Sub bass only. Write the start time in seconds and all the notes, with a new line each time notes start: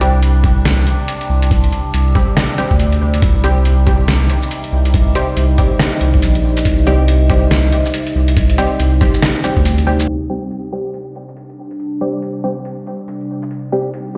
Already playing: C2
1.29 C2
1.94 C2
2.71 D2
3.22 C2
4.72 C2
5.37 C2
6.01 C2
6.22 A#1
6.65 C2
8.15 C2
8.80 C2
9.57 D2